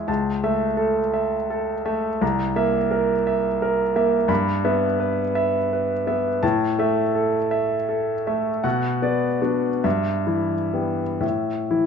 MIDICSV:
0, 0, Header, 1, 2, 480
1, 0, Start_track
1, 0, Tempo, 713436
1, 57, Time_signature, 6, 3, 24, 8
1, 1495, Tempo, 692841
1, 3415, Tempo, 724638
1, 5335, Tempo, 770218
1, 6295, Tempo, 841515
1, 6775, Tempo, 960000
1, 7570, End_track
2, 0, Start_track
2, 0, Title_t, "Grand piano"
2, 0, Program_c, 0, 0
2, 0, Control_c, 0, 64, 127
2, 0, Note_on_c, 0, 56, 42
2, 0, Note_on_c, 0, 68, 46
2, 0, Note_on_c, 0, 76, 47
2, 51, Note_on_c, 0, 37, 59
2, 53, Note_on_c, 0, 81, 50
2, 67, Control_c, 0, 64, 0
2, 70, Note_off_c, 0, 56, 0
2, 70, Note_off_c, 0, 68, 0
2, 70, Note_off_c, 0, 76, 0
2, 190, Control_c, 0, 64, 127
2, 293, Note_on_c, 0, 57, 52
2, 295, Note_on_c, 0, 76, 56
2, 435, Note_off_c, 0, 81, 0
2, 519, Note_on_c, 0, 69, 53
2, 670, Note_off_c, 0, 57, 0
2, 671, Note_off_c, 0, 76, 0
2, 764, Note_on_c, 0, 76, 54
2, 907, Note_off_c, 0, 69, 0
2, 1012, Note_on_c, 0, 69, 51
2, 1155, Note_off_c, 0, 76, 0
2, 1249, Note_on_c, 0, 57, 48
2, 1249, Note_on_c, 0, 76, 54
2, 1400, Note_off_c, 0, 69, 0
2, 1465, Note_off_c, 0, 37, 0
2, 1489, Note_on_c, 0, 36, 63
2, 1491, Note_off_c, 0, 57, 0
2, 1491, Note_off_c, 0, 76, 0
2, 1493, Note_on_c, 0, 82, 58
2, 1504, Control_c, 0, 64, 0
2, 1598, Control_c, 0, 64, 127
2, 1729, Note_on_c, 0, 58, 55
2, 1732, Note_on_c, 0, 76, 61
2, 1875, Note_off_c, 0, 82, 0
2, 1973, Note_on_c, 0, 70, 53
2, 2116, Note_off_c, 0, 58, 0
2, 2117, Note_off_c, 0, 76, 0
2, 2220, Note_on_c, 0, 76, 59
2, 2363, Note_off_c, 0, 70, 0
2, 2465, Note_on_c, 0, 70, 58
2, 2602, Note_off_c, 0, 76, 0
2, 2698, Note_on_c, 0, 58, 53
2, 2700, Note_on_c, 0, 76, 56
2, 2837, Note_off_c, 0, 70, 0
2, 2898, Note_off_c, 0, 36, 0
2, 2922, Note_on_c, 0, 43, 72
2, 2927, Note_on_c, 0, 83, 64
2, 2930, Note_off_c, 0, 58, 0
2, 2931, Note_off_c, 0, 76, 0
2, 2940, Control_c, 0, 64, 0
2, 3047, Control_c, 0, 64, 127
2, 3175, Note_on_c, 0, 59, 62
2, 3176, Note_on_c, 0, 76, 58
2, 3315, Note_off_c, 0, 83, 0
2, 3419, Note_on_c, 0, 71, 56
2, 3560, Note_off_c, 0, 59, 0
2, 3560, Note_off_c, 0, 76, 0
2, 3653, Note_on_c, 0, 76, 67
2, 3795, Note_off_c, 0, 71, 0
2, 3901, Note_on_c, 0, 71, 50
2, 4031, Note_off_c, 0, 76, 0
2, 4128, Note_on_c, 0, 59, 50
2, 4131, Note_on_c, 0, 76, 54
2, 4275, Note_off_c, 0, 71, 0
2, 4334, Note_off_c, 0, 43, 0
2, 4364, Note_on_c, 0, 81, 66
2, 4365, Note_off_c, 0, 59, 0
2, 4366, Note_off_c, 0, 76, 0
2, 4367, Note_on_c, 0, 45, 74
2, 4375, Control_c, 0, 64, 0
2, 4496, Control_c, 0, 64, 127
2, 4603, Note_on_c, 0, 57, 56
2, 4608, Note_on_c, 0, 76, 61
2, 4748, Note_off_c, 0, 81, 0
2, 4843, Note_on_c, 0, 69, 52
2, 4986, Note_off_c, 0, 57, 0
2, 4989, Note_off_c, 0, 76, 0
2, 5083, Note_on_c, 0, 76, 58
2, 5233, Note_off_c, 0, 69, 0
2, 5332, Note_on_c, 0, 69, 50
2, 5476, Note_off_c, 0, 76, 0
2, 5570, Note_on_c, 0, 76, 51
2, 5572, Note_on_c, 0, 57, 50
2, 5710, Note_off_c, 0, 69, 0
2, 5782, Note_off_c, 0, 45, 0
2, 5799, Note_on_c, 0, 78, 59
2, 5800, Note_on_c, 0, 47, 62
2, 5805, Note_off_c, 0, 76, 0
2, 5806, Note_off_c, 0, 57, 0
2, 5813, Control_c, 0, 64, 0
2, 5900, Control_c, 0, 64, 127
2, 6040, Note_on_c, 0, 59, 54
2, 6043, Note_on_c, 0, 74, 55
2, 6191, Note_off_c, 0, 78, 0
2, 6277, Note_off_c, 0, 59, 0
2, 6284, Note_on_c, 0, 66, 50
2, 6287, Note_on_c, 0, 59, 42
2, 6287, Note_on_c, 0, 62, 46
2, 6433, Note_off_c, 0, 74, 0
2, 6503, Note_off_c, 0, 59, 0
2, 6503, Note_off_c, 0, 62, 0
2, 6506, Note_off_c, 0, 47, 0
2, 6524, Note_off_c, 0, 66, 0
2, 6527, Note_on_c, 0, 76, 58
2, 6529, Note_on_c, 0, 43, 65
2, 6541, Control_c, 0, 64, 0
2, 6625, Control_c, 0, 64, 127
2, 6770, Note_on_c, 0, 52, 45
2, 6772, Note_on_c, 0, 64, 43
2, 6910, Note_off_c, 0, 76, 0
2, 7006, Note_on_c, 0, 55, 44
2, 7007, Note_on_c, 0, 59, 38
2, 7148, Note_off_c, 0, 52, 0
2, 7149, Note_off_c, 0, 64, 0
2, 7229, Note_off_c, 0, 43, 0
2, 7230, Note_off_c, 0, 59, 0
2, 7240, Note_on_c, 0, 45, 52
2, 7242, Note_on_c, 0, 76, 45
2, 7249, Note_off_c, 0, 55, 0
2, 7262, Control_c, 0, 64, 0
2, 7382, Control_c, 0, 64, 127
2, 7490, Note_on_c, 0, 52, 42
2, 7491, Note_on_c, 0, 64, 47
2, 7570, Note_off_c, 0, 45, 0
2, 7570, Note_off_c, 0, 52, 0
2, 7570, Note_off_c, 0, 64, 0
2, 7570, Note_off_c, 0, 76, 0
2, 7570, End_track
0, 0, End_of_file